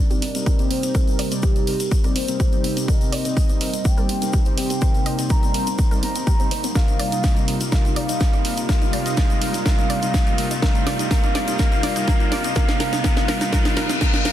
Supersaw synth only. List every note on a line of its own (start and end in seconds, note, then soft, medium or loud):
0.11 0.18 C3 medium
0.11 0.18 G3 medium
0.11 0.18 C4 medium
0.11 0.18 D#4 medium
0.11 0.18 D5 medium
0.35 0.56 C3 medium
0.35 0.56 G3 medium
0.35 0.56 C4 medium
0.35 0.56 D#4 medium
0.35 0.56 A#4 loud
0.59 0.92 C3 loud
0.59 0.92 G3 medium
0.59 0.92 C4 medium
0.59 0.92 D#4 medium
0.59 0.92 G4 loud
1.32 1.65 C3 medium
1.32 1.65 G3 medium
1.32 1.65 C4 medium
1.32 1.65 D#4 medium
1.32 1.65 D5 loud
1.67 1.75 C3 medium
1.67 1.75 G3 medium
1.67 1.75 C4 medium
1.67 1.75 D#4 medium
1.67 1.75 A#4 medium
2.04 2.11 C3 medium
2.04 2.11 G3 medium
2.04 2.11 C4 medium
2.04 2.11 D#4 medium
2.04 2.11 D5 medium
2.28 2.49 C3 medium
2.28 2.49 G3 medium
2.28 2.49 C4 medium
2.28 2.49 D#4 medium
2.28 2.50 A#4 medium
2.52 2.85 C3 loud
2.52 2.85 G3 medium
2.52 2.85 C4 medium
2.52 2.85 D#4 medium
2.52 2.85 G4 loud
2.88 3.22 C3 medium
2.88 3.22 G3 medium
2.88 3.22 C4 medium
2.88 3.22 D#4 medium
2.88 3.22 A#4 medium
3.25 3.58 C3 medium
3.25 3.58 G3 medium
3.25 3.58 C4 medium
3.25 3.58 D#4 medium
3.25 3.58 D#5 loud
3.61 3.69 C3 medium
3.61 3.69 G3 medium
3.61 3.69 C4 medium
3.61 3.69 D#4 medium
3.61 3.69 A#4 medium
3.98 4.05 C3 medium
3.98 4.05 G3 medium
3.98 4.05 C4 medium
3.98 4.05 D#4 medium
3.98 4.05 D5 medium
4.22 4.43 C3 medium
4.22 4.43 G3 medium
4.22 4.43 C4 medium
4.22 4.43 D#4 medium
4.22 4.43 A#4 loud
4.46 4.79 C3 loud
4.46 4.79 G3 medium
4.46 4.79 C4 medium
4.46 4.79 D#4 medium
4.46 4.79 G4 loud
4.82 5.16 C3 medium
5.19 5.52 C3 medium
5.19 5.52 G3 medium
5.19 5.52 C4 medium
5.19 5.52 D#4 medium
5.19 5.52 D5 medium
5.54 5.62 C3 medium
5.54 5.62 G3 medium
5.54 5.62 C4 medium
5.54 5.62 D#4 medium
5.54 5.62 A#4 medium
5.91 5.98 C3 medium
5.91 5.98 G3 medium
5.91 5.98 C4 medium
5.91 5.98 D#4 medium
5.91 5.98 D5 medium
6.40 6.47 C3 medium
6.40 6.47 G3 medium
6.40 6.47 C4 medium
6.40 6.47 D#4 medium
6.40 6.47 C5 medium
6.75 7.09 C3 medium
6.75 7.09 G3 medium
6.75 7.09 D#4 medium
6.75 7.09 F4 medium
6.75 7.09 A#4 medium
7.12 7.45 C3 medium
7.12 7.45 G3 medium
7.12 7.45 D#4 medium
7.12 7.45 F4 medium
7.12 7.45 D#5 medium
7.48 7.56 C3 medium
7.48 7.56 G3 medium
7.48 7.56 D#4 medium
7.48 7.56 F4 medium
7.48 7.56 A#4 medium
7.72 8.06 C3 medium
7.72 8.06 G3 medium
7.72 8.06 D#4 medium
7.72 8.06 F4 medium
7.72 8.06 A#4 medium
8.09 8.42 C3 medium
8.09 8.42 G3 medium
8.09 8.42 D#4 medium
8.09 8.42 F4 medium
8.09 8.42 D#5 medium
8.45 8.53 C3 medium
8.45 8.53 G3 medium
8.45 8.53 D#4 medium
8.45 8.53 F4 medium
8.45 8.53 A#4 medium
8.69 9.03 C3 medium
8.69 9.03 G3 medium
8.69 9.03 D#4 medium
8.69 9.03 F4 medium
8.69 9.03 A#4 medium
9.06 9.39 C3 medium
9.06 9.39 G3 medium
9.06 9.39 D#4 medium
9.06 9.39 F4 medium
9.06 9.39 D#5 medium
9.41 9.49 C3 medium
9.41 9.49 G3 medium
9.41 9.49 D#4 medium
9.41 9.49 F4 medium
9.41 9.49 A#4 medium
9.66 9.99 C3 medium
9.66 10.00 G3 medium
9.66 9.99 D#4 medium
9.66 9.99 F4 medium
9.66 9.99 A#4 medium
10.03 10.35 C3 medium
10.03 10.36 G3 medium
10.03 10.36 D#4 medium
10.03 10.36 F4 medium
10.03 10.36 D#5 loud
10.38 10.46 C3 medium
10.38 10.46 G3 medium
10.38 10.46 D#4 medium
10.38 10.46 F4 medium
10.38 10.46 A#4 medium
10.62 10.96 C3 medium
10.62 10.96 G3 medium
10.62 10.96 D#4 medium
10.62 10.96 F4 medium
10.62 10.96 A#4 medium
10.99 11.09 C3 medium
10.99 11.09 G3 medium
10.99 11.09 D#4 medium
10.99 11.09 F4 medium
10.99 11.09 D#5 loud
11.48 11.57 C3 medium
11.48 11.57 G3 medium
11.48 11.57 D#4 medium
11.48 11.57 F4 medium
11.48 11.57 D#5 loud
11.59 11.93 C3 medium
11.96 12.06 C3 medium
11.96 12.06 G3 medium
11.96 12.06 D#4 medium
11.96 12.06 F4 medium
11.96 12.06 D#5 loud
12.07 12.41 C3 medium
12.07 12.41 G3 medium
12.07 12.41 D#4 medium
12.07 12.41 F4 medium
12.07 12.41 A#4 medium
12.44 12.54 C3 medium
12.44 12.54 G3 medium
12.44 12.54 D#4 medium
12.44 12.54 F4 medium
12.44 12.54 D#5 medium
12.56 12.78 C3 medium
12.56 12.78 G3 medium
12.56 12.78 D#4 medium
12.56 12.78 F4 medium
12.56 12.78 A#4 medium
12.80 13.02 C3 medium
12.80 13.02 G3 medium
12.80 13.02 D#4 medium
12.80 13.02 F4 medium
12.80 13.02 A#4 medium
13.04 13.27 C3 medium
13.04 13.27 G3 medium
13.04 13.27 D#4 medium
13.04 13.27 F4 medium
13.04 13.27 A#4 medium
13.28 13.51 C3 medium
13.28 13.51 G3 medium
13.28 13.51 D#4 medium
13.28 13.51 F4 medium
13.28 13.51 A#4 medium
13.52 13.75 C3 medium
13.52 13.75 G3 medium
13.52 13.75 D#4 medium
13.52 13.75 F4 medium
13.52 13.75 A#4 medium
13.77 13.99 C3 medium
13.77 13.99 G3 medium
13.77 13.99 D#4 medium
13.77 13.99 F4 medium
13.77 13.99 A#4 medium
14.01 14.23 D#4 medium
14.01 14.23 F4 medium
14.01 14.23 A#4 medium
14.25 14.32 C3 medium
14.25 14.32 G3 medium
14.25 14.32 D#4 medium
14.25 14.32 F4 medium
14.25 14.32 A#4 medium